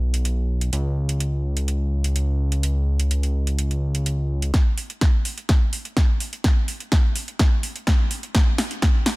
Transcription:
0.00 0.70 B1 medium
0.14 closed hi-hat soft
0.25 closed hi-hat medium
0.61 closed hi-hat soft
0.73 4.51 C#2 medium
0.73 closed hi-hat medium
1.09 closed hi-hat soft
1.20 closed hi-hat medium
1.57 closed hi-hat soft
1.68 closed hi-hat medium
2.04 closed hi-hat soft
2.16 closed hi-hat medium
2.52 closed hi-hat medium
2.63 closed hi-hat medium
3.00 closed hi-hat medium
3.11 closed hi-hat medium
3.23 closed hi-hat soft
3.47 closed hi-hat soft
3.59 closed hi-hat medium
3.71 closed hi-hat soft
3.95 closed hi-hat soft
4.06 closed hi-hat medium
4.42 closed hi-hat soft
4.54 kick loud
4.54 snare soft
4.54 closed hi-hat medium
4.78 open hi-hat loud
4.90 closed hi-hat medium
5.01 kick loud
5.01 snare soft
5.01 closed hi-hat medium
5.25 open hi-hat loud
5.38 closed hi-hat medium
5.49 kick loud
5.49 snare soft
5.49 closed hi-hat medium
5.73 open hi-hat loud
5.85 closed hi-hat medium
5.97 kick loud
5.97 snare medium
5.97 closed hi-hat medium
6.20 open hi-hat loud
6.33 closed hi-hat medium
6.44 kick loud
6.44 snare medium
6.44 closed hi-hat medium
6.68 open hi-hat loud
6.80 closed hi-hat medium
6.92 kick loud
6.92 snare medium
6.92 closed hi-hat medium
7.16 open hi-hat loud
7.28 closed hi-hat medium
7.39 kick loud
7.39 snare medium
7.39 closed hi-hat medium
7.63 open hi-hat loud
7.76 closed hi-hat soft
7.87 kick loud
7.87 snare medium
7.87 closed hi-hat medium
8.11 open hi-hat loud
8.23 closed hi-hat medium
8.35 kick loud
8.35 snare medium
8.35 closed hi-hat medium
8.58 snare medium
8.58 open hi-hat loud
8.71 closed hi-hat medium
8.82 kick loud
8.82 snare medium
8.82 closed hi-hat medium
9.06 snare medium
9.06 open hi-hat loud

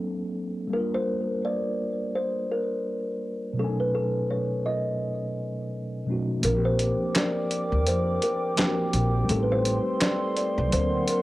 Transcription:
0.00 0.67 F#3 medium
0.00 0.68 A#3 medium
0.00 0.70 C4 medium
0.00 0.71 D4 medium
0.00 0.72 A4 medium
0.67 3.51 G3 medium
0.67 3.53 A#3 medium
0.73 3.54 D4 soft
0.73 3.56 F4 medium
0.73 0.94 A#4 medium
0.79 3.57 A#4 medium
0.94 1.46 C5 medium
1.45 2.18 D5 medium
2.15 2.52 C5 medium
2.52 3.18 A#4 medium
3.53 6.01 B2 medium
3.53 6.02 F#3 soft
3.58 6.04 A3 medium
3.58 6.05 C#4 medium
3.58 3.80 A4 medium
3.62 3.67 D4 soft
3.62 6.07 G#5 medium
3.69 6.09 D#4 medium
3.80 3.86 B4 medium
3.95 4.27 A4 medium
4.30 4.46 C#5 medium
4.66 5.68 D#5 medium
6.06 6.42 B2 medium
6.06 6.43 F#3 soft
6.06 6.44 A3 soft
6.06 6.44 C#4 medium
6.10 6.45 D#4 soft
6.10 6.45 F#4 medium
6.39 8.51 F3 medium
6.39 8.53 A#3 medium
6.43 6.91 A#1 medium
6.43 8.54 C4 medium
6.43 9.26 A#4 medium
6.43 6.65 A#4 loud
6.43 10.68 G5 medium
6.43 9.26 D6 medium
6.43 closed hi-hat medium
6.48 8.56 D4 medium
6.48 6.54 F4 medium
6.57 8.60 G4 medium
6.65 7.17 C5 medium
6.79 closed hi-hat medium
7.15 7.89 D5 medium
7.15 snare loud
7.15 clap medium
7.15 closed hi-hat medium
7.51 closed hi-hat medium
7.72 7.87 D2 medium
7.87 8.16 F2 loud
7.87 8.20 C5 medium
7.87 closed hi-hat medium
8.22 8.90 A#4 medium
8.22 closed hi-hat medium
8.56 9.28 F3 soft
8.56 9.29 A#3 soft
8.56 9.29 C4 soft
8.56 snare loud
8.56 clap medium
8.56 closed hi-hat medium
8.60 9.30 D4 soft
8.60 8.67 F#4 soft
8.68 9.34 G4 medium
8.93 9.23 A#1 loud
8.93 closed hi-hat medium
9.25 10.67 G3 medium
9.25 10.68 A3 medium
9.29 9.77 A1 loud
9.29 10.70 C4 medium
9.29 10.70 A4 medium
9.29 9.43 A4 medium
9.29 11.22 C6 medium
9.29 closed hi-hat medium
9.33 10.71 D#4 medium
9.33 10.72 G4 medium
9.43 9.50 B4 medium
9.52 10.03 C5 loud
9.65 closed hi-hat medium
10.01 10.36 D5 loud
10.01 snare loud
10.01 clap medium
10.01 closed hi-hat medium
10.37 10.74 D5 loud
10.37 closed hi-hat medium
10.58 10.70 C2 medium
10.68 11.22 F#3 medium
10.68 11.22 A#3 medium
10.68 11.22 A#4 medium
10.68 11.22 F#5 medium
10.72 11.02 D2 loud
10.72 11.22 C4 medium
10.72 11.22 D4 medium
10.72 10.89 C5 medium
10.72 closed hi-hat medium
10.79 11.22 A#4 medium
11.08 11.22 A#4 medium
11.08 closed hi-hat medium

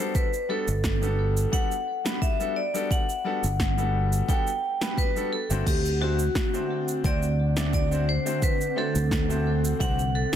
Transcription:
0.00 0.27 G3 medium
0.00 0.27 B3 medium
0.00 0.27 D4 medium
0.00 0.27 F#4 medium
0.00 0.28 A4 medium
0.00 0.13 C5 medium
0.15 0.51 B4 medium
0.15 kick loud
0.15 cabasa soft
0.33 cabasa soft
0.49 0.68 G3 medium
0.49 0.68 B3 medium
0.49 0.68 D4 medium
0.49 0.69 F#4 medium
0.49 1.56 A4 medium
0.49 0.69 A4 medium
0.68 1.45 G1 medium
0.68 cabasa medium
0.84 kick medium
0.84 snare medium
0.84 cabasa medium
1.01 1.49 G3 medium
1.01 1.49 B3 medium
1.01 1.49 D4 medium
1.01 1.49 F#4 medium
1.01 1.49 A4 medium
1.01 cabasa soft
1.37 cabasa medium
1.52 1.71 G3 medium
1.52 1.72 B3 medium
1.52 1.72 D4 medium
1.52 1.72 F#4 medium
1.52 1.72 A4 medium
1.52 2.24 F#5 loud
1.52 kick medium
1.52 cabasa medium
1.71 cabasa soft
2.04 2.34 G3 medium
2.04 2.34 B3 medium
2.04 2.34 D4 medium
2.04 2.34 F#4 medium
2.04 2.34 B4 loud
2.04 snare medium
2.04 cabasa medium
2.22 2.57 E5 loud
2.22 kick medium
2.22 cabasa soft
2.39 2.57 G3 medium
2.39 2.57 B3 medium
2.39 2.57 D4 medium
2.39 2.57 F#4 medium
2.39 2.58 A4 medium
2.39 cabasa soft
2.56 2.92 D5 medium
2.74 3.03 G3 medium
2.74 3.03 B3 medium
2.74 3.03 D4 medium
2.74 3.03 F#4 medium
2.74 3.04 A4 medium
2.74 cabasa medium
2.91 4.33 F#5 loud
2.91 kick medium
2.91 cabasa medium
3.09 cabasa soft
3.24 3.44 G3 medium
3.24 3.44 B3 medium
3.24 3.44 D4 medium
3.24 3.44 F#4 medium
3.24 3.45 A4 loud
3.44 4.21 G1 medium
3.44 cabasa medium
3.60 kick loud
3.60 snare medium
3.60 cabasa medium
3.77 4.24 G3 medium
3.77 4.25 B3 medium
3.77 4.25 D4 medium
3.77 4.25 F#4 medium
3.77 4.25 A4 medium
3.77 cabasa soft
4.13 cabasa medium
4.28 4.47 G3 medium
4.28 4.48 B3 medium
4.28 4.48 D4 medium
4.28 4.48 F#4 medium
4.28 4.48 A4 loud
4.28 4.94 G5 loud
4.28 kick loud
4.28 cabasa medium
4.47 cabasa soft
4.81 5.10 G3 medium
4.81 5.10 B3 medium
4.81 5.10 D4 medium
4.81 5.10 F#4 medium
4.81 5.10 B4 loud
4.81 snare medium
4.81 cabasa medium
4.98 5.30 B4 medium
4.98 kick loud
4.98 cabasa soft
5.15 5.33 G3 medium
5.15 5.33 B3 medium
5.15 5.33 D4 medium
5.15 5.33 F#4 medium
5.15 5.34 A4 medium
5.15 cabasa soft
5.33 5.68 A4 medium
5.50 5.62 G1 medium
5.50 5.79 A3 medium
5.50 5.79 C4 medium
5.50 5.79 D4 medium
5.50 5.79 F#4 medium
5.50 5.79 C5 medium
5.50 cabasa medium
5.67 6.27 D2 loud
5.67 10.36 D3 medium
5.67 10.36 C4 medium
5.67 5.99 G4 medium
5.67 10.36 F#5 loud
5.67 kick loud
5.67 crash medium
5.67 cabasa medium
5.85 cabasa soft
6.01 6.20 A3 medium
6.01 6.20 C4 medium
6.01 6.20 D4 medium
6.01 7.01 F#4 medium
6.01 6.20 F#4 medium
6.01 6.21 C5 medium
6.19 cabasa medium
6.35 kick loud
6.35 snare medium
6.35 cabasa medium
6.53 7.00 A3 medium
6.53 7.01 C4 medium
6.53 7.01 D4 medium
6.53 7.01 F#4 medium
6.53 7.01 C5 medium
6.53 cabasa soft
6.88 cabasa medium
7.04 8.17 D2 medium
7.04 7.23 A3 medium
7.04 7.23 C4 medium
7.04 7.24 D4 medium
7.04 7.24 F#4 medium
7.04 7.24 C5 loud
7.04 7.73 D5 medium
7.04 kick loud
7.04 cabasa medium
7.23 cabasa soft
7.56 7.85 A3 medium
7.56 7.86 C4 medium
7.56 7.86 D4 medium
7.56 7.86 F#4 medium
7.56 7.86 D5 medium
7.56 snare medium
7.56 cabasa medium
7.73 8.10 D5 loud
7.73 kick loud
7.73 cabasa soft
7.91 8.08 A3 medium
7.91 8.09 C4 medium
7.91 8.09 D4 medium
7.91 8.09 F#4 medium
7.91 8.09 C5 medium
7.91 cabasa soft
8.09 8.44 C5 medium
8.25 8.54 A3 medium
8.25 8.55 C4 medium
8.25 8.55 D4 medium
8.25 8.55 F#4 medium
8.25 8.55 C5 medium
8.25 cabasa medium
8.42 8.75 B4 loud
8.42 kick loud
8.42 cabasa medium
8.61 cabasa soft
8.76 8.95 A3 medium
8.76 8.96 C4 medium
8.76 8.96 D4 medium
8.76 8.96 F#4 medium
8.76 9.84 A4 loud
8.76 8.96 C5 loud
8.95 9.72 D2 medium
8.95 cabasa medium
9.11 kick loud
9.11 snare medium
9.11 cabasa medium
9.29 9.76 A3 medium
9.29 9.76 C4 medium
9.29 9.76 D4 medium
9.29 9.77 F#4 medium
9.29 9.77 C5 medium
9.29 cabasa soft
9.65 cabasa medium
9.79 10.24 C2 medium
9.79 9.99 A3 medium
9.79 9.99 C4 medium
9.79 9.99 D4 medium
9.79 10.00 F#4 medium
9.79 10.00 C5 loud
9.79 10.16 F#5 loud
9.79 kick loud
9.79 cabasa medium
9.99 cabasa soft
10.15 10.36 A4 medium
10.32 10.36 A3 medium
10.32 10.36 C4 medium

